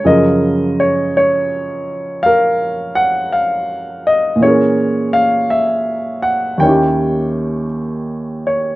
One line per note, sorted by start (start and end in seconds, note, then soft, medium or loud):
0.04 4.41 F#2 soft
0.04 4.42 C#3 soft
0.04 4.42 F3 soft
0.04 4.41 G#4 soft
0.04 2.25 A#4 soft
0.04 0.75 D#5 medium
0.80 1.15 C#5 medium
1.17 2.28 C#5 medium
2.23 4.39 A#4 medium
2.23 2.99 F5 medium
2.95 3.33 F#5 medium
3.33 4.08 F5 medium
4.07 4.43 D#5 medium
4.36 6.57 A#2 soft
4.36 6.59 E3 soft
4.42 6.60 C#4 soft
4.42 6.57 G#4 soft
4.42 5.18 C#5 medium
4.47 6.63 A#4 soft
5.13 5.47 F5 medium
5.50 6.26 E5 medium
6.22 6.60 F#5 medium
6.58 8.76 D#2 soft
6.58 8.76 D#3 soft
6.58 7.66 G5 medium
6.63 8.76 C#4 soft
6.63 8.76 E4 soft
6.63 8.45 C#5 soft
6.69 8.76 G4 soft
8.47 8.76 C#5 medium